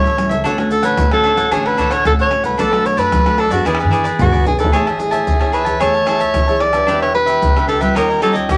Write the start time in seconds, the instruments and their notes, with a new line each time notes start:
Already playing: upright bass A1, nylon-string guitar E3, soprano saxophone C#5
0.04 cavaquinho A4 C#5 E5, pandeiro, maracas
0.17 nylon-string guitar G3 C#4 E4, muted cavaquinho stroke, pandeiro, tamborim, maracas
0.29 upright bass C#2, cavaquinho A4 C#5 E5, pandeiro, maracas
0.44 upright bass D2, nylon-string guitar D3 A3 C#4 F#4, cavaquinho D4 A4 C#5 F#5, pandeiro, maracas, surdo
0.58 nylon-string guitar A3 C#4 F#4, cavaquinho A4 C#5 F#5, pandeiro, tamborim, maracas
0.71 soprano saxophone A4, muted cavaquinho stroke, pandeiro, maracas
0.83 upright bass A1, cavaquinho A4 C#5 F#5, soprano saxophone B4, pandeiro, maracas
0.97 upright bass D2, nylon-string guitar A2, pandeiro, tamborim, maracas, surdo
1.11 nylon-string guitar A3 C#4 F#4, soprano saxophone A4, cavaquinho A4 C#5 F#5, pandeiro, tamborim, maracas
1.24 cavaquinho D4 A4 C#5 F#5, pandeiro, tamborim
1.37 upright bass A1, nylon-string guitar A3 C#4 F#4, cavaquinho A4 C#5 F#5, pandeiro, maracas
1.51 upright bass A1, nylon-string guitar D3 A3 C#4 F#4, cavaquinho D4 A4 C#5 F#5, soprano saxophone G#4, pandeiro, tamborim, maracas, surdo
1.65 cavaquinho A4 C#5 F#5, soprano saxophone B4, pandeiro, tamborim, maracas
1.77 cavaquinho D4 A4 C#5 F#5, pandeiro, maracas, surdo
1.90 cavaquinho A4 C#5 F#5, soprano saxophone C#5, pandeiro, tamborim, maracas
2.05 upright bass D2, nylon-string guitar A2 A3 C#4 F#4, soprano saxophone A4, pandeiro, tamborim, maracas, surdo
2.19 cavaquinho A4 C#5 F#5, soprano saxophone C#5, pandeiro, maracas
2.31 nylon-string guitar A3 C#4 F#4, muted cavaquinho stroke, pandeiro, tamborim
2.43 upright bass C2, cavaquinho A4 C#5 F#5, soprano saxophone B4, pandeiro, maracas
2.58 upright bass B1, nylon-string guitar B2 A3 D4 F#4, cavaquinho D4 A4 B4 D5, soprano saxophone A4, pandeiro, maracas, surdo
2.71 nylon-string guitar A3 D4 F#4, cavaquinho A4 B4 D5, pandeiro, tamborim, maracas
2.85 soprano saxophone C#5, muted cavaquinho stroke, pandeiro, maracas
2.97 upright bass F#2, cavaquinho A4 B4 D5, soprano saxophone B4, pandeiro, maracas
3.12 upright bass B1, nylon-string guitar F#3, pandeiro, tamborim, maracas, surdo
3.26 nylon-string guitar A3 D4 F#4, cavaquinho A4 B4 D5, pandeiro, tamborim, maracas
3.38 cavaquinho D4 A4 B4 D5, soprano saxophone A4, pandeiro, tamborim
3.50 upright bass F#2, nylon-string guitar B3 D4 G#4, soprano saxophone F#4, cavaquinho A4 B4 D5, pandeiro, maracas
3.65 upright bass E2, nylon-string guitar E3, cavaquinho E4 G#4 B4 D5, soprano saxophone G#4, pandeiro, tamborim, maracas, surdo
3.75 tamborim
3.79 cavaquinho G#4 B4 D5, pandeiro, maracas
3.84 surdo
3.91 cavaquinho E4 G#4 B4 D5, pandeiro, maracas
4.04 cavaquinho G#4 B4 D5, pandeiro, maracas
4.19 upright bass C#2, nylon-string guitar B2 B3 D4 G#4, soprano saxophone F#4, surdo, pandeiro, maracas
4.32 cavaquinho G#4 B4 D5, pandeiro, maracas
4.37 surdo
4.45 upright bass B1, nylon-string guitar B3 D4 G#4, soprano saxophone G#4, muted cavaquinho stroke, pandeiro, maracas, surdo
4.55 cavaquinho D5, pandeiro, maracas, surdo
4.60 cavaquinho G#4 B4, soprano saxophone A4
4.64 surdo
4.72 upright bass A1, nylon-string guitar A3 E4 G#4 C#5, cavaquinho G#4 C#5 E5 A5, soprano saxophone G#4, pandeiro, maracas, surdo
4.86 cavaquinho C#5 E5 A5, pandeiro, tamborim, maracas
4.99 nylon-string guitar E4 G#4 C#5, muted cavaquinho stroke, pandeiro, maracas
5.11 cavaquinho C#5 E5 A5, pandeiro, maracas
5.27 upright bass E2, nylon-string guitar E3, pandeiro, maracas, surdo
5.40 nylon-string guitar E4 G#4 C#5, cavaquinho C#5 E5 A5, pandeiro, tamborim, maracas, surdo
5.52 cavaquinho G#4 C#5 E5 A5, soprano saxophone B4, pandeiro, maracas
5.65 nylon-string guitar E4 G#4 C#5, cavaquinho C#5 E5 A5, pandeiro, maracas, surdo
5.80 upright bass E2, nylon-string guitar A3 E4 G#4 C#5, cavaquinho G#4 C#5 E5 A5, soprano saxophone C#5, pandeiro, tamborim, maracas, surdo
5.94 cavaquinho C#5 E5 A5, pandeiro, maracas
6.06 nylon-string guitar E4 G#4 C#5, cavaquinho G#4 C#5 E5 A5, pandeiro, tamborim
6.19 cavaquinho C#5 E5 A5, pandeiro, maracas, surdo
6.34 upright bass B1, nylon-string guitar E3, pandeiro, tamborim, maracas, surdo
6.47 nylon-string guitar E4 G#4 C#5, cavaquinho C#5 E5 A5, pandeiro, maracas
6.60 soprano saxophone D5, muted cavaquinho stroke, pandeiro, tamborim
6.73 nylon-string guitar D4 G4 B4, cavaquinho C#5 E5 A5, pandeiro, tamborim, maracas, surdo
6.87 upright bass E1, nylon-string guitar E3, cavaquinho D4 G4 B4 E5, pandeiro, maracas, surdo
7.00 cavaquinho G4 B4 E5, soprano saxophone C#5, pandeiro, tamborim, maracas
7.14 nylon-string guitar D4 G4 B4, soprano saxophone B4, muted cavaquinho stroke, pandeiro
7.26 cavaquinho G4 B4 E5, pandeiro, maracas
7.42 upright bass C#2, nylon-string guitar B2, pandeiro, maracas, surdo
7.56 nylon-string guitar D4 G4 B4, cavaquinho G4 B4 E5, pandeiro, tamborim, maracas, surdo
7.67 cavaquinho D4 G4 B4 E5, soprano saxophone A4, pandeiro, maracas
7.81 nylon-string guitar G3 C#4 F4, cavaquinho G4 B4 E5, soprano saxophone B4, pandeiro, maracas, surdo
7.95 upright bass D#2, nylon-string guitar D#3, cavaquinho D#4 G4 C#5 D#5, soprano saxophone A#4, pandeiro, tamborim, maracas, surdo
8.09 cavaquinho G4 C#5 D#5, pandeiro, maracas
8.21 nylon-string guitar G3 C#4 F4, cavaquinho D#4 G4 C#5 D#5, soprano saxophone A4, pandeiro, tamborim, maracas
8.33 cavaquinho G4 C#5 D#5, pandeiro, maracas, surdo
8.49 upright bass D#2, nylon-string guitar A#2, soprano saxophone G4, pandeiro, tamborim, maracas, surdo